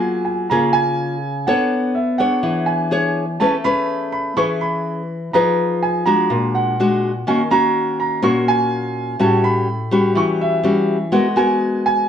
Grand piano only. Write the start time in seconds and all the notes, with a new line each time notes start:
Already playing: G#5
0.25 G#5
0.50 A#5
0.73 G#5
1.47 F#5
1.95 E5
2.18 F#5
2.66 G#5
3.40 A5
3.64 B5
4.12 B5
4.37 C#6
4.61 B5
5.33 A#5
5.83 G#5
6.06 A#5
6.55 F#5
7.28 G#5
7.51 A#5
8.00 A#5
8.23 C#6
8.48 G#5
9.20 A5
9.44 B5
9.92 B5
10.17 C#6
10.41 E5
11.12 F#5
11.37 G#5
11.86 G#5